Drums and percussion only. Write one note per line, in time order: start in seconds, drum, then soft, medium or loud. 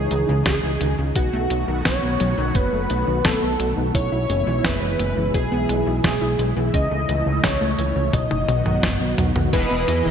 0.11 closed hi-hat medium
0.46 kick loud
0.46 snare loud
0.46 closed hi-hat medium
0.81 closed hi-hat medium
1.16 kick loud
1.16 closed hi-hat medium
1.50 closed hi-hat medium
1.85 kick loud
1.85 snare loud
1.85 closed hi-hat medium
2.20 closed hi-hat medium
2.55 kick loud
2.55 closed hi-hat medium
2.90 closed hi-hat medium
3.25 kick loud
3.25 snare loud
3.25 closed hi-hat medium
3.60 closed hi-hat medium
3.95 kick loud
3.95 closed hi-hat medium
4.30 closed hi-hat medium
4.64 kick loud
4.64 snare loud
4.64 closed hi-hat medium
5.00 closed hi-hat medium
5.34 kick loud
5.34 closed hi-hat medium
5.69 closed hi-hat medium
6.04 kick loud
6.04 snare loud
6.04 closed hi-hat medium
6.39 closed hi-hat medium
6.74 kick loud
6.74 closed hi-hat medium
7.09 closed hi-hat medium
7.44 kick loud
7.44 snare loud
7.44 closed hi-hat medium
7.79 closed hi-hat medium
8.13 kick loud
8.13 closed hi-hat medium
8.13 high tom medium
8.31 high tom medium
8.49 closed hi-hat medium
8.49 high tom medium
8.66 mid tom medium
8.83 kick loud
8.83 snare loud
8.83 closed hi-hat medium
8.83 mid tom medium
9.18 closed hi-hat medium
9.18 mid tom medium
9.36 mid tom medium
9.53 kick loud
9.53 closed hi-hat loud
9.53 crash loud
9.88 closed hi-hat medium